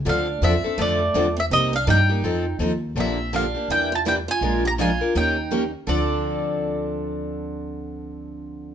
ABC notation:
X:1
M:4/4
L:1/16
Q:"Swing" 1/4=165
K:Dm
V:1 name="Mandolin"
f4 e4 d6 e2 | _e2 f2 g8 z4 | e4 f4 g2 a2 g2 ^g2- | ^g2 b2 _a4 =g6 z2 |
d16- | d16 |]
V:2 name="Steel-string acoustic guitar"
D4 C4 A,6 C2 | C2 D2 _E8 z4 | C4 D4 E2 F2 E2 F2- | F2 G2 F4 _E6 z2 |
A16- | A16 |]
V:3 name="Steel-string acoustic guitar"
[D,F,CDA]2 z2 [D,F,CDA] z [CDA]2 [D,F,CDA]2 z2 [D,F,CDA] z3 | [C,G,B,_EG]2 z2 [C,G,B,EG] z [B,EG]2 [F,CEA]2 z2 [F,CEA] z3 | [D,F,B,DG]2 z2 [D,F,B,DG] z [B,DG]2 [E,B,DG]2 z2 [E,B,DG] z3 | [F,_A,DFB]2 z2 [F,A,DFB] z [DFB]2 [_E,B,_DGB]2 z2 [E,B,DGB] z3 |
[D,F,CDA]16- | [D,F,CDA]16 |]
V:4 name="Steel-string acoustic guitar"
[D,F,CDA]2 z2 [D,F,CDA] z3 [D,F,CDA]2 z2 [D,F,CDA] z3 | [C,G,B,_EG]2 z2 [C,G,B,EG] z3 [F,CEA]2 z2 [F,CEA] z3 | [D,F,B,DG]2 z2 [D,F,B,DG] z3 [E,G,DEB]2 z2 [E,G,DEB] z3 | [F,_A,DFB]2 z2 [F,A,DFB] z3 [_E,B,_DGB]2 z2 [E,B,DGB] z3 |
[D,F,CDA]16- | [D,F,CDA]16 |]
V:5 name="Upright bass" clef=bass
D,,4 E,,2 z2 F,,4 E,,4 | C,,4 G,,4 F,,4 _E,,4 | B,,,8 E,,8 | B,,,8 _E,,8 |
D,,16- | D,,16 |]